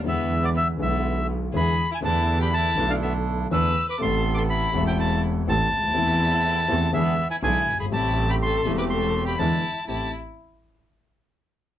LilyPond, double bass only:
\new Staff \with { instrumentName = "Double bass" } { \clef bass \time 4/4 \key a \minor \tempo 4 = 122 e,4. b,,4. e,8 r8 | e,4. b,,4. e,8 r8 | a,,4. e,,4. a,,8 d,8 | e,4. e,8 e,8 r8 b,,8 g,,8 |
a,,4. e,,4. e,8 r8 | a,,8 r2. r8 | }